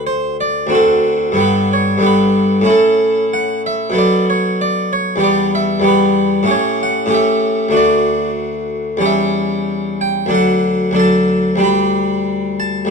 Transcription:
Already playing: D2 D3 C4 F#4
0.07 C5
0.41 D5
0.67 D2 D3 C4
0.72 F#4 A4
1.32 G2 D3 B3
1.37 G4 B4
1.73 C#5
1.98 G2 D3 B3
2.03 G4 B4
2.61 A2 A3 C#4
2.66 E4 A4
3.34 F#5
3.66 E5
3.90 B2 F#3 B3
3.95 A4 D5
4.30 C#5
4.61 D5
4.93 C#5
5.16 E2 G3 B3
5.20 G4 D5
5.55 E5
5.80 E2 G3 B3
5.84 G4 B4
6.43 A2 A3 C#4
6.47 G4 C#5
6.83 F#5
7.06 A2 A3 C#4
7.11 G4 E5
7.69 D2 A3 D4
7.73 F#4 D5
8.97 E2 G3 C#4
9.02 G4 E5
10.01 G5
10.26 D2 F#3 D4
10.31 A4 F#5
10.91 D2 F#3 D4
10.96 A4 A5
11.56 D2 G3 D4
11.60 G4 B5
12.60 A5
12.85 D2 G3

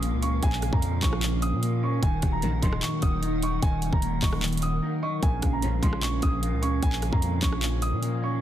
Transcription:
Already playing: A#1 A#2 F3 C#4 A#4 F5 D#6, impact
0.02 A#3, closed hi-hat
0.13 C#2
0.22 C#4 C#6, closed hi-hat
0.42 A#1 A#2 G#5, kick, closed hi-hat
0.53 clap
0.62 C#3, cross-stick, closed hi-hat
0.73 F2 A#5, kick
0.82 F3, closed hi-hat
1.02 A#1 C#4 C#6, kick, clap, closed hi-hat
1.13 cross-stick
1.23 A#2, clap, closed hi-hat
1.42 D#6, closed hi-hat
1.53 A#2
1.63 A#3, closed hi-hat
1.83 C#4 C#6
2.03 D#1 D#3 F#3 D#4 A#4 F#5 G#5, kick, closed hi-hat
2.22 D#1 F#3, kick, cross-stick, closed hi-hat
2.32 A#5
2.42 A#1 F#2 D#3 A#3, closed hi-hat
2.62 D#1 A#1 F#2 D#3 D#5 C6, kick, closed hi-hat
2.73 cross-stick
2.82 D#3 C#6, clap, closed hi-hat
3.02 D#1 D#6, kick, closed hi-hat
3.22 D#4, closed hi-hat
3.42 D#5 C#6, closed hi-hat
3.62 D#1 D#3 G#5, kick, closed hi-hat
3.82 F#3, closed hi-hat
3.93 D#1 A#5, kick
4.02 A#3, closed hi-hat
4.22 D#1 D#5 C#6, kick, clap, open hi-hat
4.33 cross-stick
4.42 D#3, clap, closed hi-hat
4.48 closed hi-hat
4.53 closed hi-hat
4.57 closed hi-hat
4.62 D#6, closed hi-hat
4.82 D#4
5.02 D#5 C#6
5.22 A#1 A#2 F3 C#4 F5 G#5, kick, closed hi-hat
5.42 A#1 C#3, kick, cross-stick, closed hi-hat
5.53 A#5
5.62 A#1 F2 C#3 F3, closed hi-hat
5.83 A#1 C#2 A#2 F3 C#4 C6, kick, closed hi-hat
5.93 cross-stick
6.02 A#2 C#6, clap, closed hi-hat
6.22 A#1 D#6, kick, closed hi-hat
6.42 A#3, closed hi-hat
6.52 C#2
6.62 C#4 C#6, closed hi-hat
6.82 A#1 A#2 G#5, kick, closed hi-hat
6.93 clap
7.02 C#3, cross-stick, closed hi-hat
7.12 F2 A#5, kick
7.22 F3, closed hi-hat
7.42 A#1 C#4 C#6, kick, clap, closed hi-hat
7.52 cross-stick
7.63 A#2, clap, closed hi-hat
7.82 D#6, closed hi-hat
7.92 A#2
8.03 A#3, closed hi-hat
8.22 C#4 C#6

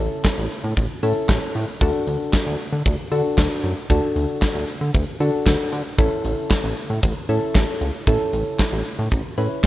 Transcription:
Already playing: C#4 E4 A4
0.25 kick, snare, clap, closed hi-hat
0.38 A1
0.51 closed hi-hat
0.64 A2
0.77 A1, kick, closed hi-hat
1.03 A2 C#4 E4 A4, closed hi-hat
1.29 A1, kick, snare, clap, closed hi-hat
1.55 A2, open hi-hat
1.81 D2 D4 F#4 A4, kick, closed hi-hat
2.07 D2, closed hi-hat
2.33 kick, snare, clap, closed hi-hat
2.47 D2
2.60 open hi-hat
2.73 D3
2.85 D2, kick, closed hi-hat
3.12 D3 D4 F#4 A4, closed hi-hat
3.38 D2, kick, snare, clap, closed hi-hat
3.64 F#2, closed hi-hat
3.90 D2 D4 F#4 A4, kick, closed hi-hat
4.16 D2, closed hi-hat
4.42 kick, snare, clap, closed hi-hat
4.55 D2
4.68 closed hi-hat
4.81 D3
4.94 D2, kick, closed hi-hat
5.20 D3 D4 F#4 A4, closed hi-hat
5.46 D2, kick, snare, clap, closed hi-hat
5.72 D3, closed hi-hat
5.98 A1 C#4 E4 A4, kick, closed hi-hat
6.25 A1, closed hi-hat
6.51 kick, snare, clap, closed hi-hat
6.64 A1
6.77 closed hi-hat
6.90 A2
7.03 A1, kick, closed hi-hat
7.29 A2 C#4 E4 A4, closed hi-hat
7.55 A1, kick, snare, clap, closed hi-hat
7.81 C#2, closed hi-hat
8.07 A1 C#4 E4 A4, kick, closed hi-hat
8.33 A1, closed hi-hat
8.59 kick, snare, clap, closed hi-hat
8.72 A1
8.85 closed hi-hat
8.99 A2
9.11 A1, kick, closed hi-hat
9.38 A2 C#4 E4 B4, closed hi-hat

